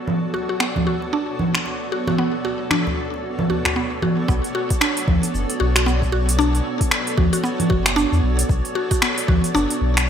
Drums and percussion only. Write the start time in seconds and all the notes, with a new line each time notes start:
0.08 low conga
0.34 djembe slap
0.60 finger snap
0.76 low conga, djembe bass
1.02 djembe slap
1.39 djembe tone, low conga
1.55 finger snap
1.66 djembe slap
2.07 djembe slap, low conga
2.45 djembe slap
2.71 finger snap, low conga
2.87 djembe bass
3.14 djembe slap
3.39 djembe tone, low conga
3.50 djembe tone, djembe bass
3.65 finger snap, djembe slap, djembe bass
3.92 djembe tone
4.02 djembe tone, low conga
4.29 kick, cabasa
4.44 open hi-hat, cabasa
4.70 kick, open hi-hat, cabasa
4.81 finger snap, cabasa
4.97 open hi-hat, cabasa
5.08 kick, low conga
5.23 open hi-hat, cabasa
5.35 cabasa
5.50 open hi-hat, cabasa
5.76 finger snap, open hi-hat, cabasa
5.88 cabasa
6.02 kick, cabasa
6.29 open hi-hat, cabasa
6.40 cabasa
6.55 open hi-hat, cabasa
6.81 kick, open hi-hat, cabasa
6.91 finger snap, cabasa
7.07 open hi-hat, cabasa
7.18 kick, low conga
7.33 open hi-hat, cabasa
7.45 cabasa
7.60 open hi-hat, low conga, cabasa
7.70 kick
7.86 finger snap, open hi-hat, cabasa
7.97 cabasa
8.13 cabasa
8.39 open hi-hat, cabasa
8.49 kick, cabasa
8.65 open hi-hat, cabasa
8.91 kick, open hi-hat, cabasa
9.02 finger snap, cabasa
9.18 open hi-hat, cabasa
9.28 kick, low conga
9.44 open hi-hat, cabasa
9.56 cabasa
9.70 open hi-hat, cabasa
9.97 finger snap, open hi-hat, cabasa